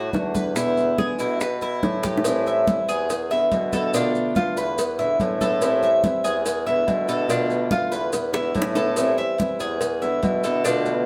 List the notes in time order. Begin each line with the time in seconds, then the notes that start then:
Already playing: F#4
0.12 E2 D3 A3 D4 F#4, high bongo, low bongo, high conga, maracas
0.34 B4, high bongo, high conga, maracas
0.55 B2 D3 G#3 B3 E4, high bongo, high conga, maracas
0.77 high conga, maracas
0.97 D3 G#3 B3 E4 G#4, high bongo, high conga, maracas
1.18 B2 D3 G#3 B3 E4, high bongo, high conga, maracas
1.39 B4, muted steel-string acoustic guitar stroke, high bongo, high conga, maracas
1.61 E4, high bongo, high conga, maracas
1.82 A2 D3 G#3 B3 E4, high bongo, low bongo, high conga, maracas
2.03 G4, high bongo, high conga, maracas
2.17 low bongo
2.24 E3 G3 C4 E4, cowbell, high conga, maracas
2.46 E5, high conga, maracas
2.67 E3 G3 C4 E4, cowbell, high conga, maracas
2.88 E2 G#4, high conga, maracas
3.10 muted steel-string acoustic guitar stroke, cowbell, high conga, maracas
3.30 D3 G#3 B3 E4 E5, high conga, maracas
3.51 B2 D3 G#3 B3 E4, cowbell, high conga, maracas
3.73 D3 G#3 B3 E4 A4, cowbell, high conga, maracas
3.93 B2 D3 A3 B3 D4 F4, cowbell, high conga, maracas
4.15 high conga, maracas
4.35 D3 A3 B3 F4, cowbell, high conga, maracas
4.56 E2 B4, maracas
4.78 muted steel-string acoustic guitar stroke, cowbell, high conga, maracas
4.99 D3 G#3 B3 E4 E5, high conga, maracas
5.20 A2 D3 G#3 B3 E4, cowbell, high conga, maracas
5.41 D3 G#3 B3 E4 A4, cowbell, high conga, maracas
5.61 E3 G3 C4 E4, cowbell, high conga, maracas
5.83 E5, high conga, maracas
6.03 E3 G3 C4 E4, cowbell, high conga, maracas
6.24 E2 G#4, high conga, maracas
6.45 muted steel-string acoustic guitar stroke, cowbell, high conga, maracas
6.66 D3 G#3 B3 E4 E5, high conga, maracas
6.86 B2 D3 G#3 B3 E4, cowbell, high conga, maracas
7.07 D3 G#3 B3 E4 A4, cowbell, maracas
7.28 B2 D3 A3 B3 D4 F4, cowbell, high conga, maracas
7.50 high conga, maracas
7.70 D3 A3 B3 F4, cowbell, high conga, maracas
7.92 E2 B4, maracas
8.13 muted steel-string acoustic guitar stroke, cowbell, high conga, maracas
8.33 D3 G#3 B3 E4 E5, high bongo, high conga, maracas
8.55 A2 D3 G#3 B3 E4, cowbell, high conga, maracas
8.62 low bongo
8.74 D3 G#3 B3 E4 A4, cowbell, low bongo, maracas
8.96 E3 G3 C4 E4, cowbell, high conga, maracas
9.18 E5, high conga, maracas
9.38 E3 G3 C4 E4, cowbell, high conga, maracas
9.59 E2 G#4, high conga, maracas
9.80 muted steel-string acoustic guitar stroke, cowbell, high conga, maracas
10.01 D3 G#3 B3 E4 E5, high conga, maracas
10.22 B2 D3 G#3 B3 E4, cowbell, high conga, maracas
10.44 D3 G#3 B3 E4 A4, cowbell, maracas
10.64 B2 D3 A3 B3 D4 F4, cowbell, high conga, maracas
10.86 high conga, maracas